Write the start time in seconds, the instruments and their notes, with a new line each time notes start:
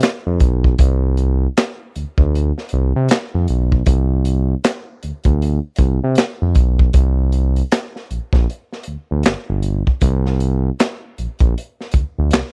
0.00 snare, clap, closed hi-hat
0.27 analog synth bass F2
0.40 analog synth bass B1, kick, closed hi-hat
0.64 kick
0.78 analog synth bass C2, kick, closed hi-hat
1.17 closed hi-hat
1.57 snare, clap, closed hi-hat
1.96 analog synth bass D2, closed hi-hat
2.18 analog synth bass D2, kick
2.35 closed hi-hat
2.58 snare
2.69 closed hi-hat
2.73 analog synth bass C2
2.96 analog synth bass C3
3.09 snare, clap, closed hi-hat
3.34 analog synth bass F2
3.48 analog synth bass B1, closed hi-hat
3.72 kick
3.86 analog synth bass C2, kick, closed hi-hat
4.25 closed hi-hat
4.64 snare, clap, closed hi-hat
5.03 analog synth bass D2, closed hi-hat
5.24 analog synth bass D2, kick, closed hi-hat
5.42 closed hi-hat
5.76 analog synth bass C2, kick, closed hi-hat
6.04 analog synth bass C3
6.15 snare, clap, closed hi-hat
6.42 analog synth bass F2
6.55 analog synth bass B1, kick, closed hi-hat
6.79 kick
6.93 analog synth bass C2, kick, closed hi-hat
7.32 closed hi-hat
7.56 closed hi-hat
7.72 snare, clap, closed hi-hat
7.96 snare
8.11 analog synth bass A#1, closed hi-hat
8.33 analog synth bass A#1, kick, snare
8.50 closed hi-hat
8.73 snare
8.83 closed hi-hat
8.88 analog synth bass D2
9.11 analog synth bass D2
9.23 analog synth bass G1, snare, clap, closed hi-hat
9.50 analog synth bass G1
9.63 closed hi-hat
9.87 kick
10.01 analog synth bass C2, kick, closed hi-hat
10.26 snare
10.40 closed hi-hat
10.80 snare, clap, closed hi-hat
11.18 analog synth bass A#1, closed hi-hat
11.39 analog synth bass A#1, kick, closed hi-hat
11.58 closed hi-hat
11.81 snare
11.92 analog synth bass D2, kick, closed hi-hat
12.19 analog synth bass D2
12.31 analog synth bass C2, snare, clap, closed hi-hat